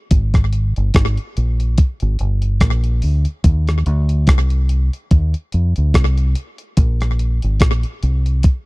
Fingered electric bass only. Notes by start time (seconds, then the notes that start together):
0.12 G#1
0.77 G1
0.95 G#1
1.38 A#1
2.02 G#1
2.20 G1
2.61 A#1
3.03 D2
3.45 D#2
3.87 D2
4.28 C2
5.12 D#2
5.54 F2
5.78 D2
5.95 C2
6.78 A#1
7.44 G#1
7.61 A#1
8.03 C2